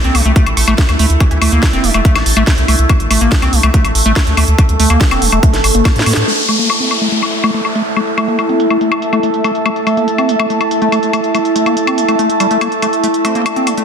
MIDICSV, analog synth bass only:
0, 0, Header, 1, 2, 480
1, 0, Start_track
1, 0, Tempo, 422535
1, 1369, Time_signature, 4, 2, 24, 8
1, 15728, End_track
2, 0, Start_track
2, 0, Title_t, "Analog synth bass"
2, 0, Program_c, 0, 38
2, 48, Note_on_c, 0, 36, 89
2, 121, Note_off_c, 0, 36, 0
2, 168, Note_on_c, 0, 36, 97
2, 241, Note_off_c, 0, 36, 0
2, 288, Note_on_c, 0, 36, 97
2, 360, Note_off_c, 0, 36, 0
2, 528, Note_on_c, 0, 33, 88
2, 600, Note_off_c, 0, 33, 0
2, 648, Note_on_c, 0, 33, 98
2, 720, Note_off_c, 0, 33, 0
2, 768, Note_on_c, 0, 33, 88
2, 840, Note_off_c, 0, 33, 0
2, 1008, Note_on_c, 0, 38, 84
2, 1080, Note_off_c, 0, 38, 0
2, 1128, Note_on_c, 0, 38, 100
2, 1201, Note_off_c, 0, 38, 0
2, 1248, Note_on_c, 0, 38, 94
2, 1321, Note_off_c, 0, 38, 0
2, 1488, Note_on_c, 0, 38, 86
2, 1561, Note_off_c, 0, 38, 0
2, 1609, Note_on_c, 0, 38, 97
2, 1681, Note_off_c, 0, 38, 0
2, 1729, Note_on_c, 0, 38, 97
2, 1801, Note_off_c, 0, 38, 0
2, 1968, Note_on_c, 0, 28, 88
2, 2041, Note_off_c, 0, 28, 0
2, 2089, Note_on_c, 0, 28, 104
2, 2161, Note_off_c, 0, 28, 0
2, 2208, Note_on_c, 0, 28, 88
2, 2281, Note_off_c, 0, 28, 0
2, 2449, Note_on_c, 0, 33, 90
2, 2521, Note_off_c, 0, 33, 0
2, 2568, Note_on_c, 0, 33, 99
2, 2641, Note_off_c, 0, 33, 0
2, 2688, Note_on_c, 0, 33, 89
2, 2761, Note_off_c, 0, 33, 0
2, 2928, Note_on_c, 0, 36, 84
2, 3001, Note_off_c, 0, 36, 0
2, 3048, Note_on_c, 0, 36, 104
2, 3121, Note_off_c, 0, 36, 0
2, 3169, Note_on_c, 0, 36, 99
2, 3241, Note_off_c, 0, 36, 0
2, 3409, Note_on_c, 0, 33, 86
2, 3481, Note_off_c, 0, 33, 0
2, 3528, Note_on_c, 0, 33, 99
2, 3601, Note_off_c, 0, 33, 0
2, 3648, Note_on_c, 0, 33, 94
2, 3721, Note_off_c, 0, 33, 0
2, 3888, Note_on_c, 0, 36, 86
2, 3960, Note_off_c, 0, 36, 0
2, 4008, Note_on_c, 0, 36, 104
2, 4080, Note_off_c, 0, 36, 0
2, 4128, Note_on_c, 0, 36, 93
2, 4200, Note_off_c, 0, 36, 0
2, 4368, Note_on_c, 0, 33, 88
2, 4440, Note_off_c, 0, 33, 0
2, 4488, Note_on_c, 0, 33, 97
2, 4560, Note_off_c, 0, 33, 0
2, 4608, Note_on_c, 0, 33, 93
2, 4680, Note_off_c, 0, 33, 0
2, 4848, Note_on_c, 0, 38, 83
2, 4920, Note_off_c, 0, 38, 0
2, 4968, Note_on_c, 0, 38, 101
2, 5040, Note_off_c, 0, 38, 0
2, 5088, Note_on_c, 0, 38, 97
2, 5160, Note_off_c, 0, 38, 0
2, 5328, Note_on_c, 0, 38, 89
2, 5400, Note_off_c, 0, 38, 0
2, 5448, Note_on_c, 0, 38, 101
2, 5520, Note_off_c, 0, 38, 0
2, 5568, Note_on_c, 0, 38, 93
2, 5640, Note_off_c, 0, 38, 0
2, 5808, Note_on_c, 0, 28, 90
2, 5880, Note_off_c, 0, 28, 0
2, 5928, Note_on_c, 0, 28, 102
2, 6000, Note_off_c, 0, 28, 0
2, 6048, Note_on_c, 0, 28, 94
2, 6120, Note_off_c, 0, 28, 0
2, 6288, Note_on_c, 0, 31, 90
2, 6360, Note_off_c, 0, 31, 0
2, 6408, Note_on_c, 0, 31, 94
2, 6480, Note_off_c, 0, 31, 0
2, 6528, Note_on_c, 0, 31, 90
2, 6601, Note_off_c, 0, 31, 0
2, 6768, Note_on_c, 0, 45, 87
2, 6841, Note_off_c, 0, 45, 0
2, 6889, Note_on_c, 0, 45, 106
2, 6961, Note_off_c, 0, 45, 0
2, 7008, Note_on_c, 0, 45, 95
2, 7081, Note_off_c, 0, 45, 0
2, 15728, End_track
0, 0, End_of_file